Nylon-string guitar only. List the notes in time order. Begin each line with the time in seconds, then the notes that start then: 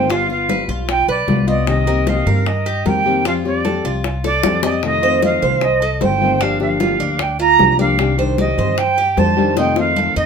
Already playing: D#3
0.09 G3 B3 F4
0.29 B3 F4
0.49 G3 B3 F4
0.88 muted nylon-string guitar stroke
1.28 G3 B3 F4
1.47 B3 F4
1.67 C3 D#3 A#3 C4 G4
1.87 D#3 A#3 C4 G4
2.07 D#3 A#3 C4 G4
2.47 muted nylon-string guitar stroke
2.86 D#3 A#3 C4 G4
3.06 D#3 A#3 C4 G4
3.25 F3 G3 C4 G4
3.45 G3 C4 G4
3.65 F3 G3 C4 G4
4.05 muted nylon-string guitar stroke
4.44 F3 G3 C4 G4
4.63 G3 C4 G4
4.83 C3 D#3 A3 C4 F4
5.02 D#3 A3 C4 F4
5.22 D#3 A3 C4 F4
5.62 muted nylon-string guitar stroke
6.01 D#3 A3 C4 F4
6.21 D#3 A3 C4 F4
6.40 D3 F3 A#3 D4 G4
6.61 F3 A#3 D4 G4
6.80 F3 A#3 D4 G4
7.19 muted nylon-string guitar stroke
7.59 F3 A#3 D4 G4
7.79 F3 A#3 D4 G4
7.98 C3 D#3 G3 D4 G4
8.18 D#3 G3 D4 G4
8.38 D#3 G3 G4
8.78 muted nylon-string guitar stroke
9.17 D#3 G3 D4 G4
9.37 D#3 G3 D4 G4
9.57 C3 D#3 A3 C4 F4
9.77 D#3 A3 C4 F4
9.96 D#3 A3 C4 F4